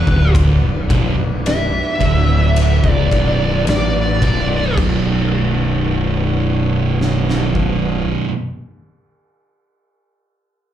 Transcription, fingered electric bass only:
0, 0, Header, 1, 2, 480
1, 0, Start_track
1, 0, Key_signature, 2, "minor"
1, 0, Tempo, 1109057
1, 149, Time_signature, 4, 2, 24, 8
1, 4647, End_track
2, 0, Start_track
2, 0, Title_t, "Fingered electric bass"
2, 0, Program_c, 0, 33
2, 30, Note_on_c, 0, 26, 97
2, 252, Note_off_c, 0, 26, 0
2, 268, Note_on_c, 0, 23, 85
2, 380, Note_off_c, 0, 23, 0
2, 389, Note_on_c, 0, 23, 99
2, 500, Note_off_c, 0, 23, 0
2, 508, Note_on_c, 0, 23, 75
2, 731, Note_off_c, 0, 23, 0
2, 868, Note_on_c, 0, 26, 81
2, 1210, Note_off_c, 0, 26, 0
2, 1230, Note_on_c, 0, 25, 97
2, 1340, Note_off_c, 0, 25, 0
2, 1348, Note_on_c, 0, 23, 95
2, 1570, Note_off_c, 0, 23, 0
2, 1583, Note_on_c, 0, 33, 96
2, 1808, Note_off_c, 0, 33, 0
2, 1826, Note_on_c, 0, 23, 94
2, 2050, Note_off_c, 0, 23, 0
2, 2068, Note_on_c, 0, 23, 90
2, 3469, Note_off_c, 0, 23, 0
2, 4647, End_track
0, 0, End_of_file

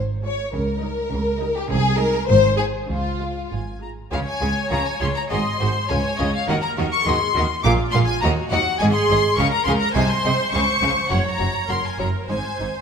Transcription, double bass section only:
0, 0, Header, 1, 2, 480
1, 0, Start_track
1, 0, Key_signature, -5, "major"
1, 0, Tempo, 583658
1, 448, Time_signature, 2, 2, 24, 8
1, 1886, Tempo, 601202
1, 4766, Tempo, 578592
1, 9086, Tempo, 597015
1, 10457, End_track
2, 0, Start_track
2, 0, Title_t, "Double bass section"
2, 0, Program_c, 0, 48
2, 0, Note_on_c, 0, 32, 70
2, 346, Note_off_c, 0, 32, 0
2, 447, Note_on_c, 0, 37, 76
2, 824, Note_off_c, 0, 37, 0
2, 925, Note_on_c, 0, 37, 82
2, 1304, Note_off_c, 0, 37, 0
2, 1408, Note_on_c, 0, 36, 101
2, 1787, Note_off_c, 0, 36, 0
2, 1889, Note_on_c, 0, 32, 102
2, 2269, Note_off_c, 0, 32, 0
2, 2364, Note_on_c, 0, 37, 82
2, 2755, Note_off_c, 0, 37, 0
2, 2859, Note_on_c, 0, 32, 65
2, 3245, Note_off_c, 0, 32, 0
2, 3343, Note_on_c, 0, 37, 97
2, 3407, Note_off_c, 0, 37, 0
2, 3581, Note_on_c, 0, 37, 85
2, 3645, Note_off_c, 0, 37, 0
2, 3815, Note_on_c, 0, 37, 94
2, 3879, Note_off_c, 0, 37, 0
2, 4055, Note_on_c, 0, 37, 86
2, 4119, Note_off_c, 0, 37, 0
2, 4297, Note_on_c, 0, 32, 95
2, 4361, Note_off_c, 0, 32, 0
2, 4536, Note_on_c, 0, 32, 83
2, 4600, Note_off_c, 0, 32, 0
2, 4769, Note_on_c, 0, 37, 98
2, 4835, Note_off_c, 0, 37, 0
2, 5015, Note_on_c, 0, 37, 95
2, 5082, Note_off_c, 0, 37, 0
2, 5253, Note_on_c, 0, 39, 104
2, 5319, Note_off_c, 0, 39, 0
2, 5494, Note_on_c, 0, 39, 89
2, 5561, Note_off_c, 0, 39, 0
2, 5731, Note_on_c, 0, 39, 106
2, 5798, Note_off_c, 0, 39, 0
2, 5977, Note_on_c, 0, 39, 97
2, 6044, Note_off_c, 0, 39, 0
2, 6216, Note_on_c, 0, 34, 116
2, 6283, Note_off_c, 0, 34, 0
2, 6467, Note_on_c, 0, 34, 98
2, 6533, Note_off_c, 0, 34, 0
2, 6703, Note_on_c, 0, 39, 106
2, 6769, Note_off_c, 0, 39, 0
2, 6938, Note_on_c, 0, 39, 105
2, 7004, Note_off_c, 0, 39, 0
2, 7179, Note_on_c, 0, 32, 111
2, 7245, Note_off_c, 0, 32, 0
2, 7423, Note_on_c, 0, 32, 94
2, 7489, Note_off_c, 0, 32, 0
2, 7651, Note_on_c, 0, 37, 100
2, 7717, Note_off_c, 0, 37, 0
2, 7891, Note_on_c, 0, 37, 106
2, 7957, Note_off_c, 0, 37, 0
2, 8130, Note_on_c, 0, 36, 109
2, 8196, Note_off_c, 0, 36, 0
2, 8373, Note_on_c, 0, 36, 93
2, 8439, Note_off_c, 0, 36, 0
2, 8606, Note_on_c, 0, 37, 99
2, 8673, Note_off_c, 0, 37, 0
2, 8845, Note_on_c, 0, 37, 94
2, 8912, Note_off_c, 0, 37, 0
2, 9082, Note_on_c, 0, 30, 97
2, 9146, Note_off_c, 0, 30, 0
2, 9319, Note_on_c, 0, 30, 85
2, 9383, Note_off_c, 0, 30, 0
2, 9559, Note_on_c, 0, 30, 83
2, 9624, Note_off_c, 0, 30, 0
2, 9792, Note_on_c, 0, 30, 83
2, 9856, Note_off_c, 0, 30, 0
2, 10037, Note_on_c, 0, 32, 87
2, 10101, Note_off_c, 0, 32, 0
2, 10284, Note_on_c, 0, 32, 74
2, 10348, Note_off_c, 0, 32, 0
2, 10457, End_track
0, 0, End_of_file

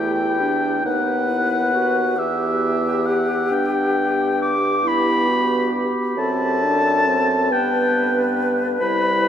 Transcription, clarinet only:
0, 0, Header, 1, 2, 480
1, 0, Start_track
1, 0, Tempo, 891530
1, 453, Time_signature, 6, 3, 24, 8
1, 3809, Tempo, 865801
1, 5033, End_track
2, 0, Start_track
2, 0, Title_t, "Clarinet"
2, 0, Program_c, 0, 71
2, 0, Note_on_c, 0, 64, 60
2, 214, Note_off_c, 0, 64, 0
2, 217, Note_on_c, 0, 62, 69
2, 451, Note_off_c, 0, 62, 0
2, 457, Note_on_c, 0, 63, 61
2, 692, Note_on_c, 0, 64, 67
2, 700, Note_off_c, 0, 63, 0
2, 930, Note_off_c, 0, 64, 0
2, 933, Note_on_c, 0, 66, 71
2, 1171, Note_on_c, 0, 67, 66
2, 1179, Note_off_c, 0, 66, 0
2, 1888, Note_on_c, 0, 62, 64
2, 1896, Note_off_c, 0, 67, 0
2, 2462, Note_off_c, 0, 62, 0
2, 2606, Note_on_c, 0, 64, 73
2, 2844, Note_on_c, 0, 66, 67
2, 2852, Note_off_c, 0, 64, 0
2, 3086, Note_on_c, 0, 67, 83
2, 3094, Note_off_c, 0, 66, 0
2, 3335, Note_on_c, 0, 69, 66
2, 3343, Note_off_c, 0, 67, 0
2, 4060, Note_on_c, 0, 71, 83
2, 4068, Note_off_c, 0, 69, 0
2, 4769, Note_off_c, 0, 71, 0
2, 4772, Note_on_c, 0, 64, 67
2, 5033, Note_off_c, 0, 64, 0
2, 5033, End_track
0, 0, End_of_file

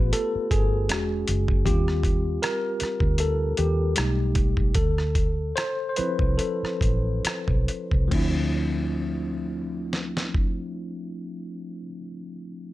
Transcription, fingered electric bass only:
0, 0, Header, 1, 3, 480
1, 0, Start_track
1, 0, Tempo, 765306
1, 1032, Time_signature, 4, 2, 24, 8
1, 2480, Tempo, 808625
1, 3920, Tempo, 865801
1, 4880, Tempo, 892857
1, 7364, End_track
2, 0, Start_track
2, 0, Title_t, "Fingered electric bass"
2, 0, Program_c, 0, 33
2, 0, Note_on_c, 0, 33, 74
2, 73, Note_off_c, 0, 33, 0
2, 325, Note_on_c, 0, 31, 77
2, 564, Note_off_c, 0, 31, 0
2, 564, Note_on_c, 0, 28, 81
2, 776, Note_off_c, 0, 28, 0
2, 807, Note_on_c, 0, 30, 80
2, 1017, Note_off_c, 0, 30, 0
2, 1043, Note_on_c, 0, 39, 91
2, 1490, Note_off_c, 0, 39, 0
2, 1890, Note_on_c, 0, 38, 70
2, 2214, Note_off_c, 0, 38, 0
2, 2250, Note_on_c, 0, 39, 78
2, 2465, Note_off_c, 0, 39, 0
2, 2495, Note_on_c, 0, 35, 83
2, 2933, Note_off_c, 0, 35, 0
2, 2958, Note_on_c, 0, 38, 84
2, 3409, Note_off_c, 0, 38, 0
2, 3815, Note_on_c, 0, 36, 65
2, 3915, Note_off_c, 0, 36, 0
2, 4163, Note_on_c, 0, 33, 65
2, 4375, Note_off_c, 0, 33, 0
2, 4531, Note_on_c, 0, 35, 67
2, 4629, Note_off_c, 0, 35, 0
2, 4778, Note_on_c, 0, 36, 64
2, 4876, Note_off_c, 0, 36, 0
2, 4886, Note_on_c, 0, 38, 77
2, 6884, Note_off_c, 0, 38, 0
2, 7364, End_track
3, 0, Start_track
3, 0, Title_t, "Muted fingered electric bass strokes"
3, 222, Note_on_c, 9, 29, 40
3, 285, Note_off_c, 9, 29, 0
3, 1766, Note_on_c, 9, 29, 38
3, 1829, Note_off_c, 9, 29, 0
3, 3687, Note_on_c, 9, 29, 36
3, 3746, Note_off_c, 9, 29, 0
3, 4059, Note_on_c, 9, 29, 37
3, 4114, Note_off_c, 9, 29, 0
3, 4403, Note_on_c, 9, 29, 36
3, 4458, Note_off_c, 9, 29, 0
3, 7364, End_track
0, 0, End_of_file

